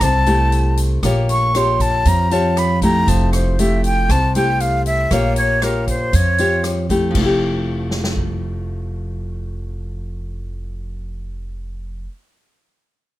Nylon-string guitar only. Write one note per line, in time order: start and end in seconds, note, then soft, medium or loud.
0.01 1.01 C3 soft
0.27 0.99 A3 medium
0.27 0.99 E4 medium
0.27 1.00 G4 medium
1.04 2.03 A#3 medium
1.04 1.51 F4 medium
1.04 1.51 G4 soft
1.04 1.51 C#5 medium
1.55 2.27 F4 soft
1.55 2.27 G4 medium
1.55 2.28 C#5 medium
2.06 3.05 F3 soft
2.31 2.78 F4 medium
2.31 2.78 G4 medium
2.31 2.78 C#5 medium
2.83 3.55 A3 medium
2.83 3.55 E4 medium
2.83 3.55 G4 medium
3.08 4.07 F3 soft
3.59 4.09 A3 soft
3.59 4.09 E4 soft
3.59 4.10 G4 medium
4.10 5.09 C3 soft
4.36 5.08 A3 medium
4.36 5.08 E4 medium
4.36 5.08 G4 medium
5.12 6.11 A#3 soft
5.12 5.59 F4 soft
5.12 5.59 G4 medium
5.12 5.59 C#5 medium
5.63 6.13 F4 medium
5.63 6.13 G4 soft
5.63 6.13 C#5 medium
6.14 7.09 F3 soft
6.39 6.86 F4 soft
6.39 6.86 G4 medium
6.39 6.86 C#5 medium
6.90 7.16 A3 medium
6.90 7.20 E4 medium
6.90 7.24 G4 medium
7.11 12.05 F3 medium
7.17 12.11 A3 medium
7.21 12.16 E4 medium
7.26 12.20 G4 medium